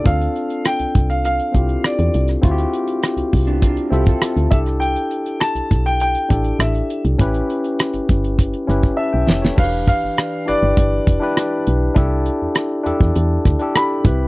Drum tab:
CC |----------------|----------------|----------------|----------------|
HH |xxxxxxxxxxxxxxxx|xxxxxxoxxxxxxxxx|xxxxxxxxxxxxxxxx|xxxxxxxxxxxx----|
SD |----r-------r--r|----r-------r--r|----r-------r---|----r-----r---oo|
BD |o-----o---o-----|o-----o-o--o--o-|------o---o-----|o-----o-o--o----|

CC |x---------------|----------------|
HH |-xx-x-x-x-x-x-x-|x-x-x-x-x-xxx-x-|
SD |----r-------r---|----r-----r-r---|
BD |o-o-----o-o-----|o------o--o---o-|